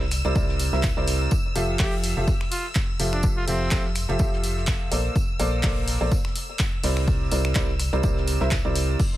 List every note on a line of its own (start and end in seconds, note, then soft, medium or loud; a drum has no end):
0.00 0.22 C2 loud
0.00 9.01 E6 medium
0.00 snare soft
0.11 finger snap medium
0.11 open hi-hat loud
0.11 tambourine medium
0.24 0.33 C2 loud
0.24 0.34 C3 medium
0.24 0.34 E4 medium
0.24 0.34 A#4 medium
0.24 0.34 C5 medium
0.24 0.34 D5 loud
0.24 closed hi-hat soft
0.36 0.70 C2 loud
0.36 0.70 C3 medium
0.36 0.70 E4 medium
0.36 0.70 A#4 medium
0.36 0.70 C5 medium
0.36 0.70 D5 medium
0.36 kick loud
0.36 tambourine medium
0.49 snare medium
0.60 snare soft
0.60 open hi-hat loud
0.60 tambourine medium
0.73 0.94 C2 loud
0.73 0.84 C3 medium
0.73 0.84 E4 medium
0.73 0.84 A#4 medium
0.73 0.84 C5 medium
0.73 0.84 E5 medium
0.73 snare medium
0.83 kick loud
0.83 snare loud
0.83 clap loud
0.83 tambourine medium
0.97 1.28 C2 loud
0.97 1.30 C3 medium
0.97 1.30 E4 medium
0.97 1.30 A#4 medium
0.97 1.30 C5 medium
0.97 1.30 D5 loud
1.07 open hi-hat loud
1.07 tambourine medium
1.31 kick loud
1.31 tambourine medium
1.55 1.77 F1 loud
1.55 1.76 F3 medium
1.55 1.76 F4 medium
1.55 1.76 G4 medium
1.55 1.76 A4 medium
1.55 1.76 E5 loud
1.55 open hi-hat loud
1.55 tambourine medium
1.79 2.14 F1 loud
1.79 2.14 F3 medium
1.79 2.14 F4 medium
1.79 1.95 G4 medium
1.79 2.14 E5 loud
1.79 kick loud
1.79 snare loud
1.79 clap loud
1.79 open hi-hat medium
1.93 snare soft
2.04 open hi-hat loud
2.04 tambourine medium
2.17 2.26 F1 loud
2.17 2.28 F3 medium
2.17 2.28 F4 medium
2.17 2.28 G4 medium
2.17 2.28 A4 medium
2.17 2.28 E5 medium
2.28 kick loud
2.28 tambourine medium
2.41 finger snap medium
2.41 snare soft
2.51 2.66 F4 medium
2.51 open hi-hat loud
2.51 tambourine medium
2.64 snare soft
2.75 kick loud
2.75 snare loud
2.75 clap loud
2.75 tambourine medium
3.00 3.45 F1 medium
3.00 3.45 F3 medium
3.00 3.45 F4 medium
3.00 3.45 G4 medium
3.00 3.45 A4 medium
3.00 3.45 E5 medium
3.00 open hi-hat loud
3.00 tambourine medium
3.13 3.26 D4 loud
3.13 finger snap medium
3.23 kick loud
3.23 tambourine loud
3.37 3.45 F4 medium
3.48 3.69 F1 loud
3.48 3.68 F3 medium
3.48 3.85 C4 loud
3.48 3.68 F4 medium
3.48 3.68 G4 medium
3.48 3.68 A4 medium
3.48 3.68 E5 medium
3.48 open hi-hat loud
3.48 tambourine medium
3.71 4.06 F1 loud
3.71 3.85 F3 medium
3.71 3.85 F4 medium
3.71 3.85 G4 medium
3.71 3.85 A4 medium
3.71 kick loud
3.71 snare loud
3.71 clap loud
3.71 tambourine medium
3.85 snare soft
3.95 finger snap medium
3.95 open hi-hat loud
3.95 tambourine medium
4.09 4.17 F1 loud
4.09 4.18 F3 medium
4.09 4.18 F4 medium
4.09 4.18 G4 medium
4.09 4.18 A4 medium
4.09 4.18 E5 loud
4.09 closed hi-hat soft
4.19 4.89 F1 loud
4.19 4.89 F3 medium
4.19 4.89 F4 medium
4.19 4.89 G4 medium
4.19 4.89 A4 medium
4.19 4.89 E5 medium
4.19 kick loud
4.19 tambourine medium
4.33 snare medium
4.43 snare soft
4.43 open hi-hat loud
4.43 tambourine medium
4.57 snare medium
4.67 kick loud
4.67 snare loud
4.67 clap loud
4.67 tambourine medium
4.92 5.10 A#1 medium
4.92 5.12 A#3 medium
4.92 5.12 A4 medium
4.92 5.12 A#4 medium
4.92 5.12 C5 medium
4.92 5.12 D5 medium
4.92 open hi-hat loud
4.92 tambourine medium
5.16 kick loud
5.16 tambourine medium
5.40 5.61 A#1 loud
5.40 5.60 A#3 medium
5.40 5.60 A4 medium
5.40 5.60 A#4 medium
5.40 5.60 C5 medium
5.40 5.60 D5 loud
5.40 open hi-hat loud
5.40 tambourine medium
5.63 5.98 A#1 loud
5.63 5.98 A#3 medium
5.63 5.98 A4 medium
5.63 5.98 A#4 medium
5.63 5.98 C5 medium
5.63 5.98 D5 medium
5.63 kick loud
5.63 snare loud
5.63 clap loud
5.63 open hi-hat medium
5.77 snare soft
5.88 open hi-hat medium
5.88 tambourine medium
6.01 6.10 A#1 loud
6.01 6.12 A#3 medium
6.01 6.12 A4 medium
6.01 6.12 A#4 medium
6.01 6.12 C5 medium
6.01 6.12 D5 medium
6.11 kick loud
6.11 tambourine medium
6.25 finger snap medium
6.25 snare soft
6.36 open hi-hat loud
6.59 kick loud
6.59 snare loud
6.59 clap loud
6.59 tambourine medium
6.83 7.29 C2 loud
6.83 7.29 C3 medium
6.83 7.29 E4 medium
6.83 7.29 A#4 medium
6.83 7.29 C5 medium
6.83 7.29 D5 medium
6.83 snare loud
6.83 open hi-hat medium
6.83 open hi-hat loud
6.97 finger snap medium
6.97 snare soft
7.08 kick loud
7.08 tambourine medium
7.32 7.53 C2 loud
7.32 7.52 C3 medium
7.32 7.52 E4 medium
7.32 7.52 A#4 medium
7.32 7.52 C5 medium
7.32 7.52 D5 medium
7.32 open hi-hat loud
7.32 tambourine medium
7.45 finger snap medium
7.45 snare soft
7.55 7.90 C2 loud
7.55 7.69 C3 medium
7.55 7.69 E4 medium
7.55 7.69 A#4 medium
7.55 7.69 C5 medium
7.55 7.69 D5 loud
7.55 kick loud
7.55 snare loud
7.55 clap loud
7.55 tambourine medium
7.68 snare soft
7.80 finger snap medium
7.80 open hi-hat loud
7.80 tambourine medium
7.93 8.01 C2 loud
7.93 8.02 C3 medium
7.93 8.02 E4 medium
7.93 8.02 A#4 medium
7.93 8.02 C5 medium
7.93 8.02 D5 loud
7.93 closed hi-hat soft
8.03 8.38 C2 loud
8.03 8.38 C3 medium
8.03 8.38 E4 medium
8.03 8.38 A#4 medium
8.03 8.38 C5 medium
8.03 8.38 D5 medium
8.03 kick loud
8.03 tambourine medium
8.17 snare medium
8.27 snare soft
8.27 open hi-hat loud
8.27 tambourine medium
8.40 8.62 C2 loud
8.40 8.52 C3 medium
8.40 8.52 E4 medium
8.40 8.52 A#4 medium
8.40 8.52 C5 medium
8.40 8.52 E5 medium
8.40 snare medium
8.51 kick loud
8.51 snare loud
8.51 clap loud
8.51 tambourine medium
8.65 8.96 C2 loud
8.65 8.98 C3 medium
8.65 8.98 E4 medium
8.65 8.98 A#4 medium
8.65 8.98 C5 medium
8.65 8.98 D5 loud
8.75 open hi-hat loud
8.75 tambourine medium
9.00 9.17 C6 medium
9.00 kick loud
9.00 crash medium
9.00 tambourine medium